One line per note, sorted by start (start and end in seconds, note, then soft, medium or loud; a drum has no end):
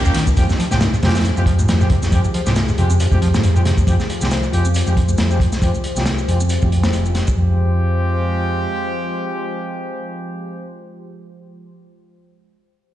0.00 0.21 A#1 loud
0.00 0.33 D#3 medium
0.00 0.33 A#3 medium
0.00 0.32 C#4 medium
0.00 0.35 D#4 medium
0.00 0.33 G4 medium
0.05 0.11 D#2 loud
0.05 0.15 A#3 medium
0.05 0.15 C#4 medium
0.05 0.15 F4 medium
0.05 0.15 G4 loud
0.05 shaker soft
0.14 0.29 D#3 loud
0.14 snare soft
0.14 closed hi-hat medium
0.14 ride medium
0.14 high conga medium
0.27 0.30 G3 medium
0.27 kick medium
0.27 low conga medium
0.27 shaker medium
0.37 0.44 F2 medium
0.37 0.45 F2 medium
0.37 7.34 F3 medium
0.37 0.45 G#3 medium
0.37 0.45 C4 medium
0.37 0.45 F4 medium
0.37 7.34 F4 medium
0.37 0.45 G4 medium
0.37 7.34 G4 medium
0.37 7.34 G#4 medium
0.37 7.34 C5 medium
0.37 kick loud
0.37 closed hi-hat medium
0.37 shaker medium
0.49 0.52 F2 loud
0.49 snare soft
0.49 shaker soft
0.59 0.66 F3 loud
0.59 closed hi-hat medium
0.71 0.97 C2 medium
0.71 0.83 G#2 medium
0.71 0.77 G#3 medium
0.71 0.77 C4 medium
0.71 0.77 F4 medium
0.71 0.77 G4 loud
0.71 snare soft
0.71 shaker medium
0.81 0.88 G2 medium
0.81 snare loud
0.81 closed hi-hat medium
0.81 shaker medium
0.93 0.96 G#2 loud
0.93 shaker soft
1.03 1.30 F2 medium
1.03 1.09 C3 medium
1.03 1.15 G#3 medium
1.03 1.15 C4 medium
1.03 1.15 F4 medium
1.03 1.15 G4 loud
1.03 snare medium
1.03 closed hi-hat medium
1.09 snare medium
1.09 closed hi-hat medium
1.15 1.20 F2 medium
1.15 snare medium
1.15 closed hi-hat medium
1.15 high conga medium
1.15 shaker medium
1.20 snare medium
1.20 closed hi-hat medium
1.25 1.31 F2 medium
1.25 closed hi-hat medium
1.25 shaker medium
1.37 1.63 F2 loud
1.37 1.40 F2 loud
1.37 1.43 G#3 medium
1.37 1.43 C4 medium
1.37 1.43 F4 medium
1.37 1.43 G4 loud
1.37 high conga medium
1.37 low conga loud
1.37 shaker soft
1.46 1.53 F3 medium
1.46 kick medium
1.46 closed hi-hat medium
1.59 1.70 G#2 medium
1.59 low conga medium
1.59 shaker medium
1.68 1.96 F2 medium
1.68 1.75 G2 medium
1.68 snare loud
1.68 closed hi-hat medium
1.68 shaker medium
1.81 1.84 G#2 loud
1.81 1.87 G#3 medium
1.81 1.87 C4 medium
1.81 1.87 F4 medium
1.81 1.87 G4 loud
1.81 shaker soft
1.90 1.97 C3 medium
1.90 kick medium
1.90 closed hi-hat medium
1.90 high conga medium
2.02 2.08 F2 medium
2.02 snare soft
2.02 low conga medium
2.02 shaker medium
2.12 2.20 F2 medium
2.12 2.19 F2 medium
2.12 2.20 G#3 medium
2.12 2.20 C4 medium
2.12 2.20 F4 medium
2.12 2.20 G4 medium
2.12 kick loud
2.12 closed hi-hat medium
2.12 shaker medium
2.24 2.28 F2 loud
2.24 shaker soft
2.34 2.41 F3 medium
2.34 closed hi-hat medium
2.46 2.73 C2 medium
2.46 2.58 G#2 medium
2.46 2.53 G#3 medium
2.46 2.53 C4 medium
2.46 2.53 F4 medium
2.46 2.53 G4 loud
2.46 snare soft
2.46 shaker medium
2.56 2.63 G2 medium
2.56 snare loud
2.56 closed hi-hat medium
2.56 shaker medium
2.68 2.72 G#2 medium
2.68 shaker soft
2.78 3.06 F2 medium
2.78 2.85 C3 medium
2.78 2.91 G#3 medium
2.78 2.91 C4 medium
2.78 2.91 F4 medium
2.78 2.91 G4 medium
2.78 closed hi-hat medium
2.90 2.96 F2 medium
2.90 high conga medium
2.90 shaker medium
3.00 3.07 F2 medium
3.00 closed hi-hat medium
3.00 shaker medium
3.12 3.38 F2 loud
3.12 3.15 F2 medium
3.12 3.18 G#3 medium
3.12 3.18 C4 medium
3.12 3.18 F4 medium
3.12 3.18 G4 loud
3.12 kick medium
3.12 high conga medium
3.12 low conga loud
3.12 shaker soft
3.22 3.28 F3 medium
3.22 closed hi-hat medium
3.34 3.45 G#2 medium
3.34 snare loud
3.34 high conga medium
3.34 low conga loud
3.34 shaker medium
3.43 3.71 F2 medium
3.43 3.50 G2 medium
3.43 closed hi-hat medium
3.43 shaker medium
3.56 3.59 G#2 loud
3.56 3.62 G#3 medium
3.56 3.62 C4 medium
3.56 3.62 F4 medium
3.56 3.62 G4 loud
3.56 shaker soft
3.65 3.72 C3 medium
3.65 snare soft
3.65 closed hi-hat medium
3.65 high conga medium
3.78 3.83 F2 medium
3.78 kick medium
3.78 low conga medium
3.78 shaker medium
3.87 3.95 F2 medium
3.87 3.95 G#3 medium
3.87 3.95 C4 medium
3.87 3.95 F4 medium
3.87 3.95 G4 medium
3.87 kick loud
3.87 closed hi-hat medium
3.87 shaker medium
4.00 snare soft
4.00 shaker soft
4.10 closed hi-hat medium
4.21 4.48 C2 medium
4.21 4.28 G#3 medium
4.21 4.28 C4 medium
4.21 4.28 F4 medium
4.21 4.28 G4 loud
4.21 snare soft
4.21 shaker medium
4.31 snare loud
4.31 closed hi-hat medium
4.31 shaker soft
4.43 shaker soft
4.53 4.81 F2 medium
4.53 4.66 G#3 medium
4.53 4.65 C4 medium
4.53 4.65 F4 medium
4.53 4.66 G4 medium
4.53 closed hi-hat medium
4.65 high conga medium
4.65 shaker medium
4.74 closed hi-hat medium
4.74 shaker soft
4.87 5.14 F2 medium
4.87 4.93 G#3 medium
4.87 4.93 C4 medium
4.87 4.93 F4 medium
4.87 4.93 G4 loud
4.87 high conga medium
4.87 low conga medium
4.87 shaker soft
4.97 kick medium
4.97 closed hi-hat medium
5.08 low conga medium
5.08 shaker medium
5.18 5.46 F2 medium
5.18 snare loud
5.18 closed hi-hat medium
5.18 shaker soft
5.31 5.37 G#3 medium
5.31 5.37 C4 medium
5.31 5.37 F4 medium
5.31 5.37 G4 medium
5.31 shaker soft
5.40 kick medium
5.40 closed hi-hat medium
5.40 high conga medium
5.52 snare soft
5.52 low conga medium
5.52 shaker medium
5.62 5.70 F2 medium
5.62 5.70 G#3 medium
5.62 5.70 C4 medium
5.62 5.70 F4 medium
5.62 5.70 G4 medium
5.62 kick loud
5.62 closed hi-hat medium
5.62 shaker soft
5.74 shaker soft
5.84 closed hi-hat medium
5.96 6.23 C2 medium
5.96 6.03 G#3 medium
5.96 6.03 C4 medium
5.96 6.03 F4 medium
5.96 6.03 G4 loud
5.96 snare soft
5.96 shaker medium
6.06 snare loud
6.06 closed hi-hat medium
6.06 shaker soft
6.18 shaker soft
6.28 6.56 F2 medium
6.28 6.41 G#3 medium
6.28 6.41 C4 medium
6.28 6.41 F4 medium
6.28 6.41 G4 medium
6.28 closed hi-hat medium
6.40 high conga medium
6.40 shaker medium
6.49 closed hi-hat medium
6.49 shaker soft
6.62 6.89 F2 medium
6.62 6.68 G#3 medium
6.62 6.68 C4 medium
6.62 6.68 F4 medium
6.62 6.68 G4 loud
6.62 kick medium
6.62 high conga medium
6.62 low conga medium
6.62 shaker soft
6.72 6.83 G#3 medium
6.72 6.83 C4 medium
6.72 6.83 F4 medium
6.72 6.83 G4 medium
6.72 closed hi-hat medium
6.83 7.03 G#3 medium
6.83 7.03 C4 medium
6.83 7.03 F4 medium
6.83 7.03 G4 medium
6.83 snare loud
6.83 high conga medium
6.83 low conga medium
6.83 shaker medium
6.93 7.21 F1 medium
6.93 closed hi-hat medium
6.93 shaker soft
7.06 7.16 G#3 medium
7.06 7.16 C4 medium
7.06 7.16 F4 medium
7.06 7.16 G4 medium
7.06 shaker soft
7.15 snare soft
7.15 closed hi-hat medium
7.15 high conga medium
7.27 kick medium
7.27 low conga medium
7.27 shaker medium
7.37 8.65 F2 medium
7.37 10.71 F3 medium
7.37 10.70 G#3 medium
7.37 10.71 G#3 medium
7.37 10.71 C4 medium
7.37 10.71 F4 medium
7.37 10.70 G4 medium
7.37 10.71 G4 medium
7.37 10.71 C5 medium